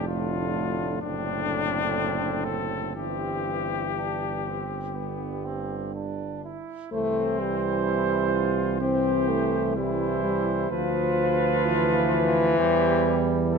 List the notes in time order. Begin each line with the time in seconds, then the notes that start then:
Already playing: F1
0.07 A2 D3 D4 F4
1.02 F#1 A2 D3 C4 D4
2.45 A4
2.94 G1 G2 E3 C4 G4
3.96 D4
4.46 C4
4.95 G2 D3 B3
5.45 C4
5.95 D4
6.44 E4
6.92 C2 E3 A3 C4 C5
7.39 G3
7.85 E4
8.33 F4
8.81 E3 C4 G4 C5
9.28 A3
9.75 E3 G3 E4 C5
10.23 G3
10.70 D2 F3 F4 B4
11.65 E3
12.57 E2 G3 G4 C5
13.49 A4 B4